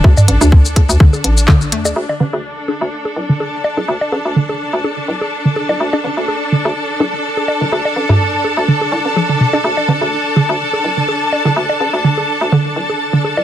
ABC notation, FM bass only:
X:1
M:4/4
L:1/16
Q:"Swing 16ths" 1/4=125
K:Cmix
V:1 name="FM bass" clef=bass
D,, z A,,, D,,4 D,, z2 A,,,4 F,, D,, | D,, z A,,, D,,4 D,, z2 D,,, A,,,4 D,,, | D,, z A,,, D,,4 D,, z2 D,,, A,,,4 D,,, | D,, z A,,, D,,4 D,, z2 D,,, A,,,4 D,,, |
D,, z A,,, D,,4 D,, z2 C,, A,,,4- A,,, | D,, z A,,, D,,4 D,, z2 D,,, A,,,4 D,,, | D,, z A,,, D,,4 D,, z2 D,,, A,,,4 D,,, |]